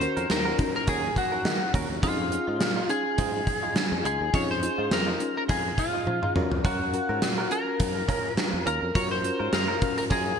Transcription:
Already playing: fm electric piano D#3 F#4 A#4, lead electric guitar C5
0.00 fm electric piano C#4 D#4 F#4 A#4, muted clean electric guitar stroke, closed hi-hat
0.17 fretless electric bass F2, clean electric guitar C#4 F#4 A#4, closed hi-hat
0.30 fretless electric bass D#2, lead electric guitar A#4, muted clean electric guitar stroke, snare, closed hi-hat
0.45 clean electric guitar C#4 F#4 A#4
0.58 fm electric piano C#4 D#4 F#4 A#4, kick, closed hi-hat
0.74 lead electric guitar A#4, muted clean electric guitar stroke
0.87 fretless electric bass D#2, clean electric guitar C#4 F#4 A#4, lead electric guitar G#4, kick, closed hi-hat
1.03 muted clean electric guitar stroke
1.16 lead electric guitar F#4, muted clean electric guitar stroke, kick, closed hi-hat
1.32 clean electric guitar C#4 F#4 A#4
1.45 fretless electric bass D#3, snare, closed hi-hat
1.61 muted clean electric guitar stroke
1.74 fretless electric bass D#2, clean electric guitar C#4 F#4 A#4, kick, closed hi-hat
1.90 fretless electric bass D#2, muted clean electric guitar stroke
2.02 fretless electric bass F2, clean electric guitar G#3 D#4 F4, fm electric piano C#4 D#4 F4 G#4, lead electric guitar F4, kick, closed hi-hat
2.19 muted clean electric guitar stroke
2.31 fm electric piano C#4 D#4 F4 G#4, muted clean electric guitar stroke, closed hi-hat
2.47 fretless electric bass G#2, clean electric guitar G#3 D#4 F4
2.61 fretless electric bass A#2, snare, closed hi-hat
2.76 clean electric guitar G#3 D#4 F4
2.89 fm electric piano C#4 D#4 F4 G#4, lead electric guitar G#4, muted clean electric guitar stroke, closed hi-hat
3.05 muted clean electric guitar stroke
3.18 fretless electric bass G#2, clean electric guitar G#3 D#4 F4, kick, closed hi-hat
3.34 muted clean electric guitar stroke
3.47 muted clean electric guitar stroke, kick, closed hi-hat
3.63 clean electric guitar G#3 D#4 F4
3.76 snare, closed hi-hat
3.92 fretless electric bass F2, muted clean electric guitar stroke
4.04 fretless electric bass C#2, clean electric guitar G#3 D#4 F4, lead electric guitar G#4, closed hi-hat
4.21 fretless electric bass D#2, muted clean electric guitar stroke
4.33 fretless electric bass F2, clean electric guitar G#3 D#4 F4, fm electric piano C#4 D#4 F4 G#4, lead electric guitar C#5, kick, closed hi-hat
4.49 lead electric guitar C5, muted clean electric guitar stroke
4.62 fm electric piano C#4 D#4 F4 G#4, muted clean electric guitar stroke, closed hi-hat
4.78 fretless electric bass G#2, clean electric guitar G#3 D#4 F4
4.91 fretless electric bass F2, lead electric guitar A#4, muted clean electric guitar stroke, snare, closed hi-hat
5.07 clean electric guitar G#3 D#4 F4
5.20 fm electric piano C#4 D#4 F4 G#4, muted clean electric guitar stroke, closed hi-hat
5.36 lead electric guitar A#4, muted clean electric guitar stroke
5.48 fretless electric bass F2, clean electric guitar G#3 D#4 F4, lead electric guitar G#4, kick, closed hi-hat
5.65 muted clean electric guitar stroke
5.77 lead electric guitar F4, muted clean electric guitar stroke, kick, closed hi-hat
5.93 clean electric guitar G#3 D#4 F4
6.07 fretless electric bass F3, muted clean electric guitar stroke, high tom
6.22 clean electric guitar G#3 D#4 F4, mid tom
6.35 fretless electric bass F#2, fm electric piano C#4 F4 F#4 A#4, clean electric guitar C#4 F4 A#4, mid tom
6.52 fretless electric bass F2, muted clean electric guitar stroke, floor tom
6.64 fretless electric bass F#2, clean electric guitar C#4 F4 A#4, lead electric guitar F#4, kick, closed hi-hat
6.80 muted clean electric guitar stroke
6.93 fm electric piano C#4 F#4 A#4 F5, muted clean electric guitar stroke, closed hi-hat
7.09 fretless electric bass G#2, clean electric guitar C#4 F4 A#4
7.22 fretless electric bass A#2, muted clean electric guitar stroke, snare, closed hi-hat
7.38 clean electric guitar C#4 F4 A#4
7.51 fm electric piano C#4 F4 F#4 A#4, lead electric guitar A#4, muted clean electric guitar stroke, closed hi-hat
7.67 muted clean electric guitar stroke
7.80 fretless electric bass F#2, kick, closed hi-hat
7.96 muted clean electric guitar stroke
8.08 clean electric guitar C#4 F4 A#4, kick, closed hi-hat
8.24 muted clean electric guitar stroke
8.37 snare, closed hi-hat
8.53 fretless electric bass F2, muted clean electric guitar stroke
8.66 fretless electric bass D#2, clean electric guitar C#4 F4 A#4, lead electric guitar A#4, closed hi-hat
8.82 fretless electric bass F2, muted clean electric guitar stroke
8.95 fretless electric bass F#2, fm electric piano C#4 F4 F#4 A#4, clean electric guitar C#4 F4 A#4, lead electric guitar C#5, kick, closed hi-hat
9.11 lead electric guitar C5, muted clean electric guitar stroke
9.24 fm electric piano C#4 F4 F#4 A#4, muted clean electric guitar stroke, closed hi-hat
9.39 fretless electric bass G#2, clean electric guitar C#4 F4 A#4
9.53 fretless electric bass F#2, lead electric guitar A#4, snare, closed hi-hat
9.68 clean electric guitar C#4 F4 A#4
9.81 fm electric piano C#4 F#4 A#4 F5, muted clean electric guitar stroke, kick, closed hi-hat
9.97 lead electric guitar A#4, muted clean electric guitar stroke, closed hi-hat
10.10 fretless electric bass F#2, clean electric guitar C#4 F4 A#4, lead electric guitar G#4, kick, closed hi-hat
10.26 muted clean electric guitar stroke

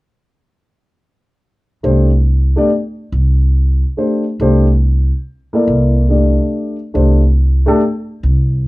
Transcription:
1.83 upright bass C2, grand piano A3 D4 G4 C5
2.56 grand piano A3 D4 G4 D5
3.12 upright bass C2
3.97 grand piano A3 D4 G4 C5
4.40 upright bass C2, grand piano A3 D4 G4 C5
5.53 grand piano A#3 E4 A4 D5
5.67 upright bass C2
6.09 grand piano A3 D4 G4 D5
6.94 upright bass C2, grand piano A3 D4 G4 C5
7.66 grand piano A3 D4 G4 A4
8.23 upright bass C2

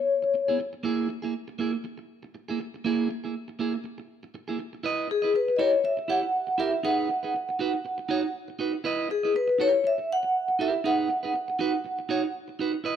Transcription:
Already playing: vibraphone C#5
0.22 muted clean electric guitar stroke
0.34 muted clean electric guitar stroke
0.48 clean electric guitar B3 E4 G#4
0.59 muted clean electric guitar stroke
0.73 muted clean electric guitar stroke
0.83 clean electric guitar A#3 E4 G#4
1.09 muted clean electric guitar stroke
1.22 clean electric guitar A#3 E4 G#4
1.48 muted clean electric guitar stroke
1.59 clean electric guitar A#3 E4 G#4
1.73 muted clean electric guitar stroke
1.84 muted clean electric guitar stroke
1.98 muted clean electric guitar stroke
2.23 muted clean electric guitar stroke
2.35 muted clean electric guitar stroke
2.48 clean electric guitar A#3 E4 G#4
2.60 muted clean electric guitar stroke
2.74 muted clean electric guitar stroke
2.85 clean electric guitar A#3 E4 G#4
3.09 muted clean electric guitar stroke
3.24 clean electric guitar A#3 E4 G#4
3.48 muted clean electric guitar stroke
3.59 clean electric guitar A#3 E4 G#4
3.74 muted clean electric guitar stroke
3.84 muted clean electric guitar stroke
3.98 muted clean electric guitar stroke
4.23 muted clean electric guitar stroke
4.34 muted clean electric guitar stroke
4.48 clean electric guitar A#3 E4 G#4
4.59 muted clean electric guitar stroke
4.73 muted clean electric guitar stroke
4.83 clean electric guitar E4 B4 D#5
5.09 vibraphone G#4, muted clean electric guitar stroke
5.22 clean electric guitar E4 B4 D#5
5.34 vibraphone B4, muted clean electric guitar stroke
5.48 muted clean electric guitar stroke
5.57 clean electric guitar E4 G4, vibraphone C#5 D#5
5.61 clean electric guitar A#4
5.73 muted clean electric guitar stroke
5.84 vibraphone E5, muted clean electric guitar stroke
5.97 muted clean electric guitar stroke
6.08 clean electric guitar E4 G4 C#5, vibraphone F#5
6.22 muted clean electric guitar stroke
6.47 muted clean electric guitar stroke
6.58 clean electric guitar E4 G4 A#4, vibraphone E5
6.73 muted clean electric guitar stroke
6.83 clean electric guitar D#4 G#4 B4, vibraphone F#5
7.09 muted clean electric guitar stroke
7.23 clean electric guitar D#4 G#4 B4
7.35 muted clean electric guitar stroke
7.49 muted clean electric guitar stroke
7.59 clean electric guitar D#4 F#4 B4
7.73 muted clean electric guitar stroke
7.85 muted clean electric guitar stroke
7.98 muted clean electric guitar stroke
8.09 clean electric guitar D#4 F#4 C#5
8.23 muted clean electric guitar stroke
8.48 muted clean electric guitar stroke
8.59 clean electric guitar D#4 F#4 B4
8.73 muted clean electric guitar stroke
8.84 clean electric guitar E4 B4 D#5
9.09 vibraphone G#4, muted clean electric guitar stroke
9.23 clean electric guitar E4 B4 D#5
9.35 vibraphone B4, muted clean electric guitar stroke
9.48 muted clean electric guitar stroke
9.58 clean electric guitar E4 G4 A#4, vibraphone C#5
9.73 muted clean electric guitar stroke
9.84 vibraphone E5, muted clean electric guitar stroke
9.98 muted clean electric guitar stroke
10.13 vibraphone F#5
10.23 muted clean electric guitar stroke
10.48 muted clean electric guitar stroke
10.59 clean electric guitar E4 G4 A#4, vibraphone E5
10.74 muted clean electric guitar stroke
10.84 clean electric guitar D#4 G#4 B4, vibraphone F#5
11.10 muted clean electric guitar stroke
11.23 clean electric guitar D#4 G#4 B4
11.34 muted clean electric guitar stroke
11.48 muted clean electric guitar stroke
11.59 clean electric guitar D#4 F#4 B4
11.74 muted clean electric guitar stroke
11.85 muted clean electric guitar stroke
11.99 muted clean electric guitar stroke
12.09 clean electric guitar D#4 F#4 C#5
12.24 muted clean electric guitar stroke
12.48 muted clean electric guitar stroke
12.59 clean electric guitar D#4 F#4 B4
12.73 muted clean electric guitar stroke
12.84 clean electric guitar E4 B4 D#5

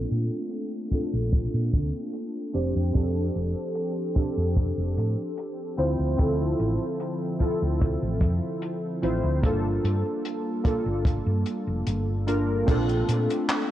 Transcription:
Already playing: ambient pad A3 A#3 D4, synth keys C4 D4 F4 A4
0.11 fretless electric bass A#2, closed hi-hat
0.51 closed hi-hat
0.91 synth keys C4 D4 F4 A4, kick, closed hi-hat
1.13 fretless electric bass A#1
1.32 kick, closed hi-hat
1.54 fretless electric bass A#2
1.73 fretless electric bass D2, kick, closed hi-hat
2.13 closed hi-hat
2.53 fretless electric bass F1, ambient pad F3 G4 A4, synth keys C4 D4 G4 C5, closed hi-hat
2.75 fretless electric bass F2
2.93 fretless electric bass F2, synth keys C4 D4 G4 A4, kick, closed hi-hat
3.35 fretless electric bass F1, closed hi-hat
3.75 closed hi-hat
4.15 synth keys C4 D4 G4 A4, kick, closed hi-hat
4.37 fretless electric bass F2
4.57 kick, closed hi-hat
4.78 fretless electric bass F1
4.97 fretless electric bass A2, closed hi-hat
5.38 closed hi-hat
5.77 fretless electric bass D2, ambient pad D3 F3 C4 E5, synth keys C4 E4 F4 C5, closed hi-hat
5.99 fretless electric bass D2
6.17 fretless electric bass D2, synth keys C4 E4 F4 A4, kick, closed hi-hat
6.60 fretless electric bass A1, closed hi-hat
7.00 closed hi-hat
7.39 synth keys C4 E4 F4 A4, kick, closed hi-hat
7.62 fretless electric bass D2
7.81 kick, closed hi-hat
8.02 fretless electric bass A1
8.21 fretless electric bass F2, kick, closed hi-hat
8.62 closed hi-hat
9.02 fretless electric bass A1, synth keys C4 E4 F4 C5, closed hi-hat
9.24 fretless electric bass D2
9.42 fretless electric bass G1, ambient pad G3 A#3 F4 A5, synth keys A#3 D4 F4 A4, kick, closed hi-hat
9.84 fretless electric bass G2, closed hi-hat
10.25 closed hi-hat
10.64 synth keys A#3 D4 F4 A4, kick, closed hi-hat
10.86 fretless electric bass G1
11.05 kick, closed hi-hat
11.26 fretless electric bass G2
11.46 closed hi-hat
11.67 fretless electric bass F1
11.87 fretless electric bass G1, closed hi-hat
12.27 synth keys A#3 D4 F4 A#4, closed hi-hat
12.66 fretless electric bass A#1, ambient pad A3 A#3 D4, synth keys C4 D4 F4 A4, kick, closed hi-hat, crash, cabasa
12.89 closed hi-hat
13.08 fretless electric bass A#2, closed hi-hat, cabasa
13.30 closed hi-hat, cabasa
13.49 clap, closed hi-hat, cabasa

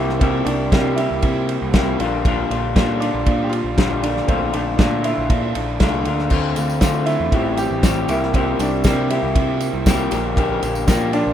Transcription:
Already playing: picked electric bass C2, clean electric guitar C3 G3 A#3 E4 G4, overdriven electric guitar G3, upright piano E4
0.09 snare
0.19 clean electric guitar C3 G3 A#3 E4 G4, upright piano C4, kick, ride
0.45 picked electric bass C2, upright piano D4, clean electric guitar E4 G4, ride
0.49 clean electric guitar A#3
0.71 picked electric bass C3, clean electric guitar G3 A#3 E4 G4, kick, snare, ride
0.96 clean electric guitar A#3 E4 G4, upright piano E4, ride
1.11 picked electric bass C2
1.22 picked electric bass C3, overdriven electric guitar E4, kick, ride
1.49 overdriven electric guitar G3, ride
1.62 picked electric bass C2
1.73 clean electric guitar C3 G3 A#3 E4 G4, kick, snare, ride
1.99 picked electric bass A#1, clean electric guitar A#2 D3 G3 D4 F4, ride
2.25 clean electric guitar A#2 D3 G3 D4 F4, kick, ride
2.50 picked electric bass A#1, clean electric guitar G3 D4 F4, ride
2.75 picked electric bass A#2, clean electric guitar D3 G3 D4 F4, kick, snare, ride
3.00 clean electric guitar G3 D4 F4, upright piano D4, ride
3.14 picked electric bass A#1
3.26 picked electric bass A#2, overdriven electric guitar D4, kick, ride
3.44 upright piano G4
3.49 overdriven electric guitar D3, upright piano F4, ride
3.64 picked electric bass A#1
3.77 clean electric guitar A#2 D3 G3 D4 F4, kick, snare, ride
4.02 clean electric guitar G3 D4 F4, upright piano D4, ride
4.16 snare
4.27 picked electric bass A#1, clean electric guitar A#2 D3 A3 D4 F4, upright piano C4, kick, ride
4.53 picked electric bass A#1, clean electric guitar A3 D4 F4, upright piano D4, ride
4.77 picked electric bass A#2, clean electric guitar D3 A3 D4 F4, upright piano D4, kick, snare, ride
5.04 clean electric guitar A3 D4 F4, upright piano E4, ride
5.18 picked electric bass A#1
5.30 picked electric bass A#2, overdriven electric guitar D4, kick, ride
5.55 picked electric bass A#1, overdriven electric guitar D3, ride
5.80 picked electric bass C2, clean electric guitar A#2 D3 A3 D4 F4, kick, snare, ride
6.05 picked electric bass D2, clean electric guitar A3 D4 F4, ride
6.19 snare
6.30 picked electric bass D2, clean electric guitar D3 A3 C4 F4, kick, crash, tambourine
6.56 picked electric bass D2, clean electric guitar A3 C4 F4, ride, tambourine
6.70 tambourine
6.80 clean electric guitar D3 A3 C4 F4, picked electric bass D3, kick, snare, ride, tambourine
6.96 tambourine
7.06 clean electric guitar A3 C4 F4, upright piano E4, ride, tambourine
7.20 picked electric bass E2
7.32 picked electric bass A1, clean electric guitar A2 E3 G3 C4 G4, kick, ride
7.57 overdriven electric guitar E3, upright piano G4, ride, tambourine
7.71 picked electric bass A1
7.83 clean electric guitar A2 E3 G3 C4 G4, kick, snare, ride, tambourine
8.08 picked electric bass C2, clean electric guitar C3 G3 A#3 E4 G4, upright piano E4, ride, tambourine
8.23 snare
8.33 clean electric guitar C3 G3 A#3 E4 G4, upright piano C4, kick, ride, tambourine
8.59 picked electric bass C2, clean electric guitar A#3 E4 G4, upright piano D4, ride, tambourine
8.84 picked electric bass C3, clean electric guitar G3 A#3 E4 G4, kick, snare, ride, tambourine
9.10 clean electric guitar A#3 E4 G4, upright piano E4, ride
9.23 picked electric bass C2
9.35 picked electric bass C3, overdriven electric guitar E4, kick, ride
9.60 overdriven electric guitar G3, ride, tambourine
9.74 picked electric bass C2
9.86 clean electric guitar C3 G3 A#3 E4 G4, kick, snare, ride, tambourine
10.11 picked electric bass A#1, clean electric guitar A#2 D3 F3 A#3 D4 G4, ride, tambourine
10.36 clean electric guitar A#2 D3 F3 A#3 D4 G4, kick, ride, tambourine
10.63 picked electric bass A#1, clean electric guitar F3 A#3 D4 G4, ride, tambourine
10.75 tambourine
10.87 picked electric bass A#2, clean electric guitar F3 A#3 D4 G4, overdriven electric guitar G3, kick, snare, ride, tambourine
11.01 tambourine
11.13 clean electric guitar F3 A#3 D4 G4, upright piano D4, overdriven electric guitar F4, ride, tambourine
11.27 picked electric bass A#1

